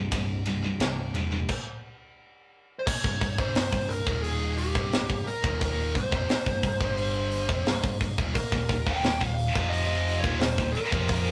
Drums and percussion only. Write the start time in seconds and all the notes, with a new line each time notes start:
0.12 kick, ride
0.46 ride
0.80 snare, ride
1.15 ride
1.49 kick, crash
2.87 kick, crash
3.04 kick
3.21 kick, open hi-hat
3.38 kick
3.55 snare, open hi-hat
3.73 kick
3.90 open hi-hat
4.07 kick
4.24 open hi-hat
4.58 open hi-hat
4.75 kick
4.93 snare, open hi-hat
5.10 kick
5.27 open hi-hat
5.44 kick
5.61 kick, open hi-hat
5.95 kick, open hi-hat
6.12 kick
6.29 snare, open hi-hat
6.46 kick
6.63 kick, open hi-hat
6.81 kick
6.98 open hi-hat
7.32 open hi-hat
7.49 kick
7.66 snare, open hi-hat
7.84 kick
8.01 kick, open hi-hat
8.18 kick
8.35 kick, open hi-hat
8.52 kick
8.69 kick, open hi-hat
8.87 kick
9.04 snare, open hi-hat
9.21 kick
9.39 open hi-hat
9.55 kick
9.73 open hi-hat
10.08 open hi-hat
10.24 kick
10.41 snare, open hi-hat
10.58 kick
10.75 open hi-hat
10.92 kick
11.08 kick, open hi-hat